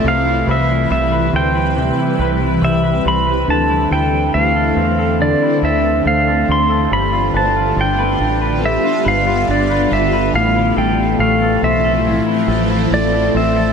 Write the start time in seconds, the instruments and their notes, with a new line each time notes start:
Already playing: ambient pad E3, clean electric guitar A3 C4 E4 A4
0.04 fingered electric bass C2, ambient pad C3 G3 B4, clean electric guitar C3
0.08 pedal steel guitar F5
0.27 clean electric guitar E4
0.47 fingered electric bass C2, clean electric guitar B4
0.51 pedal steel guitar E5
0.70 clean electric guitar E4
0.90 fingered electric bass C2, clean electric guitar G3, pedal steel guitar E5
1.12 clean electric guitar B4
1.33 fingered electric bass D2, clean electric guitar C4, pedal steel guitar G5
1.55 clean electric guitar B4
1.77 clean electric guitar C3
1.99 clean electric guitar E4
2.19 fingered electric bass C2, clean electric guitar B4
2.42 clean electric guitar E4
2.62 fingered electric bass C2, clean electric guitar G3, pedal steel guitar E5
2.84 clean electric guitar B4
3.05 fingered electric bass C2, clean electric guitar C4, pedal steel guitar B5
3.27 clean electric guitar B4
3.48 fingered electric bass D2, clean electric guitar D3, ambient pad D3 A3 C4, pedal steel guitar A5
3.70 clean electric guitar E4
3.91 fingered electric bass D2, clean electric guitar A4, pedal steel guitar G5
4.34 fingered electric bass D2, clean electric guitar A3, pedal steel guitar F5
4.56 clean electric guitar A4
4.76 fingered electric bass E2, clean electric guitar C4
4.99 clean electric guitar A4
5.20 clean electric guitar D3, pedal steel guitar D5
5.42 clean electric guitar E4
5.62 fingered electric bass D2, clean electric guitar A4, pedal steel guitar E5
6.05 fingered electric bass D2, clean electric guitar A3, pedal steel guitar F5
6.27 clean electric guitar A4
6.48 fingered electric bass D2, clean electric guitar C4, pedal steel guitar C6
6.70 clean electric guitar A4
6.91 fingered electric bass G1, clean electric guitar G3, ambient pad G3 B3 F4, pedal steel guitar B5
7.12 clean electric guitar F4
7.34 fingered electric bass G1, clean electric guitar B4, pedal steel guitar A5
7.56 clean electric guitar F4
7.76 fingered electric bass G1, clean electric guitar D4
7.81 pedal steel guitar G5
7.99 clean electric guitar B4
8.20 fingered electric bass A1, clean electric guitar D4
8.42 clean electric guitar B4
8.63 clean electric guitar G3, pedal steel guitar E5
8.84 clean electric guitar F4
9.05 fingered electric bass G1, clean electric guitar B4, pedal steel guitar F5
9.27 clean electric guitar F4
9.48 fingered electric bass G1, clean electric guitar D4, pedal steel guitar D5
9.70 clean electric guitar B4
9.91 fingered electric bass G1, clean electric guitar D4, pedal steel guitar E5
10.13 clean electric guitar B4
10.33 fingered electric bass A1, clean electric guitar A2, ambient pad E3 F3 A3 C4, pedal steel guitar F5
10.56 clean electric guitar E4
10.76 fingered electric bass A1, clean electric guitar A4, pedal steel guitar G5
11.19 fingered electric bass A1, clean electric guitar A3, pedal steel guitar F5
11.42 clean electric guitar A4
11.62 fingered electric bass B1, clean electric guitar C4, pedal steel guitar E5
11.84 clean electric guitar A4
12.05 clean electric guitar A2
12.26 clean electric guitar E4
12.48 fingered electric bass A1, clean electric guitar A4
12.70 clean electric guitar E4
12.91 fingered electric bass A1, clean electric guitar A3, pedal steel guitar D5
13.13 clean electric guitar A4
13.34 fingered electric bass A1, clean electric guitar C4, pedal steel guitar E5
13.56 clean electric guitar A4